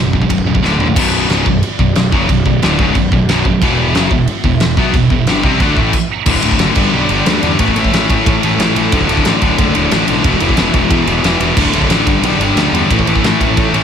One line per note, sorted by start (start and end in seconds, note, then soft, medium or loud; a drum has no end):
0.00 0.12 F#1 medium
0.00 0.12 B1 medium
0.00 0.12 F#2 medium
0.13 0.29 E1 medium
0.13 0.21 B1 medium
0.13 0.21 F#2 medium
0.13 kick medium
0.22 0.28 B1 medium
0.22 0.29 F#2 medium
0.22 kick medium
0.29 0.45 B0 medium
0.29 0.45 B1 medium
0.29 0.45 F#2 medium
0.29 kick medium
0.29 ride bell medium
0.38 kick medium
0.46 0.62 C#1 medium
0.46 0.54 B1 medium
0.46 0.54 F#2 medium
0.55 0.62 B1 medium
0.55 0.63 F#2 medium
0.55 kick medium
0.63 0.79 D1 medium
0.63 0.78 D2 medium
0.63 0.78 A2 medium
0.63 0.79 D3 loud
0.63 snare medium
0.79 0.95 A#1 medium
0.79 0.87 D2 medium
0.79 0.86 A2 medium
0.79 0.87 D3 medium
0.79 floor tom medium
0.87 0.95 D2 medium
0.87 0.96 A2 medium
0.95 1.27 B0 medium
0.95 1.29 B1 medium
0.95 1.29 F#2 medium
0.95 1.29 B2 loud
0.95 3.59 D3 medium
0.95 5.74 B3 medium
0.95 3.60 F#4 medium
0.95 3.60 D5 loud
0.95 kick loud
0.95 crash loud
0.95 crash medium
1.28 1.45 C#1 medium
1.28 1.46 C#2 medium
1.28 1.46 G#2 medium
1.28 1.46 C#3 loud
1.28 snare loud
1.28 crash medium
1.46 1.62 B0 medium
1.46 1.60 B1 medium
1.46 1.60 F#2 medium
1.46 kick medium
1.63 crash medium
1.79 1.94 B0 medium
1.79 1.93 B1 medium
1.79 1.93 F#2 medium
1.79 kick medium
1.95 2.11 B0 medium
1.95 2.10 B1 medium
1.95 2.10 F#2 medium
1.95 snare loud
1.95 crash medium
2.12 2.28 F#1 medium
2.12 2.28 F#2 medium
2.12 2.29 C#3 loud
2.12 2.29 F#3 loud
2.12 kick loud
2.29 2.44 B0 medium
2.29 2.42 B1 medium
2.29 2.43 F#2 medium
2.29 kick loud
2.29 crash medium
2.45 2.61 B0 medium
2.45 2.59 B1 medium
2.45 2.59 F#2 medium
2.45 kick medium
2.62 2.78 D1 loud
2.62 2.78 D2 loud
2.62 2.79 A2 medium
2.62 2.79 D3 medium
2.62 snare loud
2.62 crash medium
2.79 2.94 C#1 medium
2.79 2.95 C#2 medium
2.79 2.95 G#2 loud
2.79 2.96 C#3 loud
2.79 kick loud
2.95 3.11 B0 medium
2.95 3.09 B1 medium
2.95 3.09 F#2 medium
2.95 kick medium
2.95 crash medium
3.11 3.27 B0 medium
3.11 3.26 B1 medium
3.11 3.26 F#2 medium
3.11 kick medium
3.29 3.44 B0 loud
3.29 3.45 B1 loud
3.29 3.45 F#2 loud
3.29 3.45 B2 loud
3.29 snare loud
3.29 crash medium
3.45 3.60 B0 medium
3.45 3.59 B1 medium
3.45 3.59 F#2 medium
3.45 kick medium
3.62 3.93 E1 medium
3.62 3.95 E2 loud
3.62 5.76 B2 medium
3.62 3.95 B2 medium
3.62 3.95 E3 loud
3.62 5.75 E4 medium
3.62 5.75 E5 loud
3.62 kick loud
3.62 crash medium
3.95 4.10 F#1 loud
3.95 4.11 F#2 medium
3.95 4.11 C#3 medium
3.95 4.12 F#3 loud
3.95 snare loud
3.95 crash medium
4.10 4.26 E1 medium
4.10 4.25 E2 medium
4.10 4.25 B2 medium
4.10 kick medium
4.28 crash medium
4.44 4.60 E1 medium
4.44 4.58 E2 medium
4.44 4.58 B2 medium
4.44 kick medium
4.60 4.77 E1 medium
4.60 4.74 E2 medium
4.60 4.75 B2 medium
4.60 snare loud
4.60 crash medium
4.77 4.93 B1 loud
4.77 4.93 B2 medium
4.77 4.94 F#3 medium
4.77 4.94 B3 medium
4.77 kick loud
4.93 5.09 E1 medium
4.93 5.08 E2 medium
4.93 5.08 B2 medium
4.93 kick loud
4.93 crash medium
5.10 5.25 E1 medium
5.10 5.24 E2 medium
5.10 5.24 B2 medium
5.10 kick loud
5.26 5.42 G1 medium
5.26 5.44 G2 medium
5.26 5.44 D3 loud
5.26 5.43 G3 loud
5.26 snare loud
5.26 crash medium
5.43 5.59 C2 loud
5.43 5.60 C3 loud
5.43 5.60 G3 loud
5.43 5.61 C4 loud
5.43 kick loud
5.60 5.75 D2 medium
5.60 5.77 D3 medium
5.60 5.77 A3 loud
5.60 5.77 D4 loud
5.60 kick loud
5.60 crash medium
5.76 5.92 A1 loud
5.76 5.94 A2 medium
5.76 5.94 E3 medium
5.76 5.94 A3 medium
5.76 kick loud
5.93 kick loud
5.93 crash loud
6.26 6.36 D1 medium
6.26 6.44 D2 medium
6.26 6.43 A2 loud
6.26 7.58 D3 medium
6.26 6.42 D3 loud
6.26 7.58 D5 loud
6.26 kick loud
6.26 crash loud
6.34 kick medium
6.42 6.53 D1 medium
6.42 6.59 D2 medium
6.42 6.59 A2 medium
6.42 6.60 D3 medium
6.42 ride medium
6.51 kick medium
6.59 6.70 F#1 medium
6.59 6.75 D2 loud
6.59 6.76 A2 loud
6.59 6.75 D3 loud
6.59 snare loud
6.59 ride loud
6.75 6.86 G1 medium
6.75 6.93 G2 loud
6.75 6.92 D3 loud
6.75 6.92 G3 loud
6.75 7.59 B3 medium
6.75 7.59 G4 medium
6.75 kick loud
6.75 crash loud
6.93 7.04 B1 medium
6.93 7.08 G2 medium
6.93 7.09 D3 loud
6.93 7.09 G3 loud
7.09 7.20 G1 medium
7.09 7.25 G2 medium
7.09 7.25 D3 loud
7.09 7.25 G3 loud
7.09 ride medium
7.25 7.36 D2 medium
7.25 7.41 G2 medium
7.25 7.42 D3 loud
7.25 7.42 G3 loud
7.25 snare loud
7.25 ride loud
7.42 7.53 E2 medium
7.42 7.58 G2 medium
7.42 7.59 D3 medium
7.42 7.59 G3 medium
7.42 ride medium
7.59 7.69 A1 medium
7.59 7.76 A2 medium
7.59 7.76 E3 medium
7.59 8.91 E3 medium
7.59 7.76 A3 loud
7.59 8.91 C#4 medium
7.59 10.23 A4 medium
7.59 8.91 C#5 medium
7.59 kick loud
7.59 ride loud
7.68 kick medium
7.76 7.86 A1 medium
7.76 7.91 A2 medium
7.76 7.92 E3 loud
7.76 7.93 A3 medium
7.76 ride medium
7.84 kick medium
7.92 8.03 A1 medium
7.92 8.10 A2 loud
7.92 8.09 E3 loud
7.92 8.09 A3 loud
7.92 snare loud
7.92 ride loud
8.09 8.19 A1 medium
8.09 8.26 A2 medium
8.09 8.26 E3 medium
8.09 8.27 A3 loud
8.09 kick medium
8.09 ride medium
8.26 8.36 A2 loud
8.26 8.44 A2 loud
8.26 8.43 E3 loud
8.26 8.42 A3 loud
8.26 kick loud
8.26 ride loud
8.42 8.53 A1 medium
8.42 8.58 A2 medium
8.42 8.59 E3 medium
8.42 8.59 A3 loud
8.42 ride medium
8.58 8.69 A1 loud
8.58 8.76 A2 loud
8.58 8.76 E3 loud
8.58 8.75 A3 loud
8.58 snare loud
8.58 ride loud
8.76 8.86 A1 medium
8.76 8.92 A2 medium
8.76 8.92 E3 medium
8.76 8.92 A3 medium
8.76 ride medium
8.92 9.03 D1 medium
8.92 9.08 D2 loud
8.92 9.08 A2 loud
8.92 9.08 D3 loud
8.92 10.24 F#3 medium
8.92 10.24 D4 medium
8.92 10.24 D5 medium
8.92 kick loud
8.92 ride loud
9.01 kick medium
9.09 9.19 D1 medium
9.09 9.23 D2 medium
9.09 9.24 A2 medium
9.09 9.24 D3 loud
9.09 ride medium
9.17 kick medium
9.24 9.36 A1 medium
9.24 9.41 D2 medium
9.24 9.40 A2 loud
9.24 9.40 D3 loud
9.24 snare loud
9.24 ride loud
9.41 9.52 D1 medium
9.41 9.57 D2 medium
9.41 9.57 A2 medium
9.41 9.58 D3 loud
9.41 kick medium
9.41 ride medium
9.58 9.68 F#1 medium
9.58 9.75 D2 loud
9.58 9.74 A2 loud
9.58 9.74 D3 loud
9.58 kick loud
9.58 ride loud
9.75 9.86 D1 medium
9.75 9.90 D2 medium
9.75 9.91 A2 medium
9.75 9.92 D3 loud
9.75 ride medium
9.91 10.02 A1 medium
9.91 10.08 D2 loud
9.91 10.08 A2 loud
9.91 10.07 D3 loud
9.91 snare loud
9.91 ride loud
10.08 10.19 B1 medium
10.08 10.25 D2 medium
10.08 10.24 A2 medium
10.08 10.24 D3 medium
10.08 ride medium
10.24 10.34 E1 loud
10.24 10.41 E2 loud
10.24 10.41 B2 loud
10.24 10.40 E3 loud
10.24 11.56 G#3 medium
10.24 11.56 E4 medium
10.24 11.56 B4 medium
10.24 11.56 E5 loud
10.24 kick loud
10.24 ride loud
10.33 kick medium
10.40 10.52 E1 medium
10.40 10.56 E2 medium
10.40 10.57 B2 medium
10.40 10.57 E3 loud
10.40 ride medium
10.49 kick medium
10.57 10.68 E1 loud
10.57 10.73 E2 medium
10.57 10.73 B2 loud
10.57 10.72 E3 loud
10.57 snare loud
10.57 ride loud
10.74 10.84 E1 medium
10.74 10.89 E2 medium
10.74 10.90 B2 medium
10.74 10.90 E3 medium
10.74 kick medium
10.74 ride medium
10.90 11.01 E2 medium
10.90 11.07 E2 loud
10.90 11.07 B2 loud
10.90 11.07 E3 loud
10.90 kick loud
10.90 ride loud
11.07 11.18 E1 loud
11.07 11.23 E2 medium
11.07 11.23 B2 medium
11.07 11.23 E3 medium
11.07 ride medium
11.23 11.34 E1 medium
11.23 11.40 E2 loud
11.23 11.40 B2 loud
11.23 11.39 E3 loud
11.23 snare loud
11.23 ride loud
11.40 11.51 E1 medium
11.40 11.56 E2 medium
11.40 11.57 B2 medium
11.40 11.57 E3 medium
11.40 ride medium
11.56 11.67 D1 medium
11.56 11.74 D2 medium
11.56 11.73 A2 loud
11.56 11.72 D3 loud
11.56 12.89 D4 medium
11.56 12.89 D5 loud
11.56 kick loud
11.56 crash loud
11.65 kick medium
11.73 11.83 D1 medium
11.73 11.90 D2 medium
11.73 11.90 A2 medium
11.73 11.91 D3 loud
11.73 ride medium
11.82 kick medium
11.89 12.00 A1 medium
11.89 12.07 D2 medium
11.89 12.07 A2 loud
11.89 12.07 D3 loud
11.89 snare loud
11.89 ride loud
12.06 12.17 G1 medium
12.06 12.24 G2 loud
12.06 12.24 D3 loud
12.06 12.90 G3 medium
12.06 12.23 G3 loud
12.06 12.90 B4 medium
12.06 kick loud
12.06 ride medium
12.22 12.33 B1 loud
12.22 12.40 G2 medium
12.22 12.40 D3 medium
12.22 12.41 G3 loud
12.22 ride loud
12.39 12.50 G1 medium
12.39 12.58 G2 loud
12.39 12.58 D3 medium
12.39 12.57 G3 medium
12.39 ride medium
12.56 12.66 D2 medium
12.56 12.74 G2 medium
12.56 12.74 D3 medium
12.56 12.74 G3 loud
12.56 snare loud
12.56 ride loud
12.72 12.83 E2 loud
12.72 12.90 G2 medium
12.72 12.90 D3 medium
12.72 12.91 G3 medium
12.72 ride medium
12.90 13.00 A1 medium
12.90 13.08 A2 loud
12.90 13.07 E3 loud
12.90 13.84 E3 medium
12.90 13.08 A3 loud
12.90 13.84 C#4 medium
12.90 13.84 A4 medium
12.90 13.84 C#5 loud
12.90 kick loud
12.90 ride loud
12.99 kick medium
13.07 13.17 A1 medium
13.07 13.23 A2 medium
13.07 13.24 E3 medium
13.07 13.25 A3 medium
13.07 ride medium
13.16 kick medium
13.23 13.33 A1 medium
13.23 13.41 A2 loud
13.23 13.41 E3 loud
13.23 13.41 A3 loud
13.23 snare loud
13.23 ride loud
13.40 13.50 A1 medium
13.40 13.57 A2 medium
13.40 13.58 E3 medium
13.40 13.58 A3 loud
13.40 kick medium
13.40 ride medium
13.57 13.67 A2 medium
13.57 13.73 A2 loud
13.57 13.73 E3 loud
13.57 13.73 A3 loud
13.57 kick loud
13.57 ride loud
13.73 13.83 A1 medium
13.73 13.84 A2 medium
13.73 13.84 E3 medium
13.73 13.84 A3 medium
13.73 ride medium